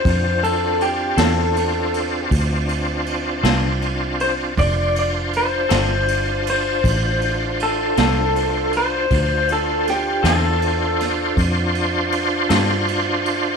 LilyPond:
<<
  \new Staff \with { instrumentName = "Clean electric guitar" } { \time 12/8 \key d \minor \tempo 4. = 53 c''8 a'8 g'8 a'4. r2 r8 c''8 | d''8 d''8 c''4. c''4. a'8 a'4 c''8~ | c''8 a'8 g'8 a'4. r2. | }
  \new Staff \with { instrumentName = "Tonewheel organ" } { \time 12/8 \key d \minor <c' d' f'>1. | <d' f' c''>1. | <d' f' c''>1. | }
  \new Staff \with { instrumentName = "Clean electric guitar" } { \time 12/8 \key d \minor r4. <d c' f' a'>8 r2 r8 <d c' f' a'>8 r4 | r4. <d c' f' a'>8 r2 r8 <d c' f' a'>8 r4 | r4. <d c' f' a'>8 r2 r8 <d c' f' a'>8 r4 | }
  \new Staff \with { instrumentName = "Fingered electric bass" } { \clef bass \time 12/8 \key d \minor f,4. e,4. d,4. c,4. | f,,4. g,,4. a,,4. c,4. | d,4. e,4. f,4. g,4. | }
  \new DrumStaff \with { instrumentName = "Drums" } \drummode { \time 12/8 <bd cymr>8 cymr8 cymr8 <cymr sn>8 cymr8 cymr8 <bd cymr>8 cymr8 cymr8 <cymr sn>8 cymr8 cymr8 | <bd cymr>8 cymr8 cymr8 <cymr sn>8 cymr8 cymr8 <bd cymr>8 cymr8 cymr8 <cymr sn>8 cymr8 cymr8 | <bd cymr>8 cymr8 <cymr sn>8 <cymr sn>8 cymr8 <cymr sn>8 <bd cymr>8 cymr8 cymr8 <cymr sn>8 cymr8 cymr8 | }
>>